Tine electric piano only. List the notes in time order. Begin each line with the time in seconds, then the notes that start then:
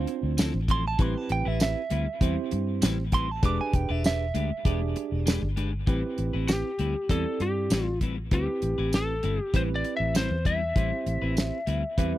Already playing: C4 D4 F4 C5
1.00 C4 E4 G4 B4
2.21 C4 E4 G4 C5
3.43 D4 G4 G#4 B4
4.65 D4 G4 G#4 D5
5.88 C4 E4 G4 B4
7.10 C4 E4 G4 D5
8.32 C4 E4 G4 B4
9.54 C4 E4 G4 B4
10.76 C4 E4 G4 C5
11.98 C4 E4 G4 B4